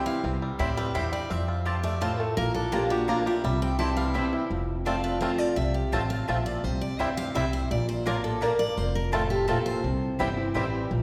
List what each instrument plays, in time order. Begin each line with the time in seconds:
Already playing: steel-string acoustic guitar E3 G3 C4 E4, five-string banjo G3 C4
0.06 five-string banjo E4, steel-string acoustic guitar F5
0.24 upright bass C2, steel-string acoustic guitar C3, five-string banjo C4
0.42 five-string banjo G3
0.59 upright bass D2, steel-string acoustic guitar A2 D5, mandolin C4 E4 C5 G5, five-string banjo E4
0.77 five-string banjo G3, steel-string acoustic guitar B4
0.94 upright bass E2, steel-string acoustic guitar G2 C5, mandolin C4 E4 C5 G5, five-string banjo E4
1.12 five-string banjo G3, steel-string acoustic guitar D5
1.30 steel-string acoustic guitar F2 E5, upright bass F2, five-string banjo C4
1.48 five-string banjo F4
1.65 steel-string acoustic guitar G2, mandolin C4 F4 C5 A5, five-string banjo G4
1.83 five-string banjo A3, steel-string acoustic guitar D5
2.01 steel-string acoustic guitar A2 C5, mandolin C4 F4 C5 A5, five-string banjo F4
2.19 five-string banjo A3, steel-string acoustic guitar A4
2.37 upright bass A#1, steel-string acoustic guitar A#2 A#4, five-string banjo A#3
2.54 five-string banjo D4, steel-string acoustic guitar A4
2.72 steel-string acoustic guitar F3 A#3 D4 F4 G4, mandolin A#3 F4 D5 A#5, five-string banjo D4
2.90 steel-string acoustic guitar D4 F4 F#4, five-string banjo G4
3.08 steel-string acoustic guitar F3 A#3 D4 F4, mandolin A#3 F4 D5 A#5, five-string banjo D4
3.26 steel-string acoustic guitar D4 E4 F4, five-string banjo G4
3.44 upright bass C2, steel-string acoustic guitar C3 E5, five-string banjo G3
3.62 five-string banjo C4, steel-string acoustic guitar G5
3.78 steel-string acoustic guitar E3 G3 C4 E4 A5, mandolin C4 E4 C5 G5, five-string banjo E4
3.97 five-string banjo G3, steel-string acoustic guitar F5
4.14 steel-string acoustic guitar E3 G3 C4 E4 E5, mandolin C4 E4 C5 G5, five-string banjo C4
4.32 steel-string acoustic guitar C4 E4, five-string banjo E4
4.50 upright bass F1, steel-string acoustic guitar F2
4.85 steel-string acoustic guitar F3 A3 C4 F4 D5, five-string banjo A3 C4 F4, mandolin C4 F4 C5 A5
5.04 steel-string acoustic guitar B4
5.20 steel-string acoustic guitar F3 A3 C4 F4 C5, five-string banjo A3 C4 F4, mandolin C4 F4 C5 A5
5.38 steel-string acoustic guitar D5
5.56 upright bass C2, steel-string acoustic guitar C3 E5
5.74 steel-string acoustic guitar G4
5.92 upright bass A1, steel-string acoustic guitar A2 C5, five-string banjo A3 C4 F4, mandolin C4 F4 C5 A5
6.10 steel-string acoustic guitar F5
6.28 upright bass A#1, steel-string acoustic guitar A#2 E5, five-string banjo A3 C4 F4, mandolin C4 F4 C5 A5
6.46 steel-string acoustic guitar D5
6.64 upright bass C2, steel-string acoustic guitar C3 C5
6.81 steel-string acoustic guitar D5
6.99 upright bass D2, steel-string acoustic guitar G2 E5, five-string banjo G3 C4 E4, mandolin C4 E4 C5 G5
7.17 steel-string acoustic guitar F5
7.34 upright bass C2, steel-string acoustic guitar C3 E5, five-string banjo G3 C4 E4, mandolin C4 E4 C5 G5
7.53 steel-string acoustic guitar C5
7.71 upright bass A#1, steel-string acoustic guitar A#2 D5
7.89 steel-string acoustic guitar C5
8.06 steel-string acoustic guitar A2 A#4, mandolin A#3 F4 D5 A#5, five-string banjo A#3 D4
8.24 steel-string acoustic guitar A4
8.41 steel-string acoustic guitar G2 A#4, mandolin A#3 F4 D5 A#5, five-string banjo A#3 D4
8.59 steel-string acoustic guitar D5
8.77 upright bass F1, steel-string acoustic guitar F2 C5
8.95 steel-string acoustic guitar A#4
9.12 steel-string acoustic guitar A2 A4, five-string banjo A3 C4 F4, mandolin C4 F4 C5 A5
9.30 steel-string acoustic guitar G4
9.47 steel-string acoustic guitar A#2 A4, five-string banjo A3 C4 F4, mandolin C4 F4 C5 A5
9.66 steel-string acoustic guitar C5
9.84 upright bass C2, steel-string acoustic guitar C3
10.19 upright bass G1, steel-string acoustic guitar E3 G3 C4 E4, five-string banjo G3 C4 E4, mandolin C4 E4 C5 G5
10.37 steel-string acoustic guitar C4 E4
10.54 upright bass A1, steel-string acoustic guitar E3 G3 C4 E4, five-string banjo G3 C4 E4, mandolin C4 E4 C5 G5
10.91 upright bass A#1, steel-string acoustic guitar A#2